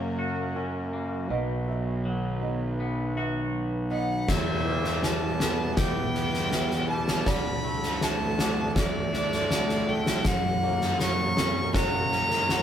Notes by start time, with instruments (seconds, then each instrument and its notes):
Already playing: clean electric guitar F#2 F#3 A#3 C#4 F#4, fingered electric bass F#2, analog synth pad C#3 F#3 A#3 F#4 A#4, felt piano C#5
0.19 clean electric guitar F#4
0.56 clean electric guitar C#4, felt piano F#5
0.93 clean electric guitar A#3
1.30 fingered electric bass B1, clean electric guitar B2, analog synth pad D#3 B3 B4, felt piano D#5
1.67 felt piano E5
2.05 clean electric guitar F#3
2.42 felt piano D#5
2.80 clean electric guitar B3
3.16 clean electric guitar F#4, felt piano E5
3.91 clean electric guitar B3, felt piano D#5, violin F#5
4.28 clean electric guitar E2, fingered electric bass E2, analog synth pad E3 G3 B3 G4 B4, violin E5, kick, snare, crash
4.65 clean electric guitar G3, felt piano B4
4.84 snare
5.03 clean electric guitar E3, violin A5, snare
5.40 clean electric guitar B3, felt piano A4, snare
5.77 clean electric guitar G4, felt piano B4, violin G5, kick, snare
6.14 clean electric guitar B3, snare
6.34 snare
6.52 clean electric guitar E3, felt piano E5, snare
6.71 snare
6.89 clean electric guitar G3, violin A5
7.08 snare
7.26 fingered electric bass D2, clean electric guitar D3, analog synth pad D3 F#3 A3 A4, felt piano D5, violin B5, kick, snare
7.64 clean electric guitar A3
7.83 snare
8.01 clean electric guitar D3, felt piano E5, violin A5, snare
8.38 clean electric guitar D4, felt piano F#5, snare
8.75 violin D5, kick, snare
9.13 clean electric guitar D4, felt piano D5, snare
9.32 snare
9.51 clean electric guitar D3, snare
9.69 snare
9.88 clean electric guitar A3, felt piano A4, violin G5
10.06 snare
10.25 clean electric guitar F#2, fingered electric bass F#2, analog synth pad C#3 A#3 A#4, violin F#5, kick, snare
10.62 clean electric guitar A#3, felt piano C#5
10.81 snare
11.00 clean electric guitar F#3, violin C#6, snare
11.37 felt piano C4, clean electric guitar C#4, snare
11.74 clean electric guitar F#4, felt piano C#5, violin A#5, kick, snare
12.12 clean electric guitar C#4, snare
12.30 snare
12.49 clean electric guitar F#3, felt piano F#5, snare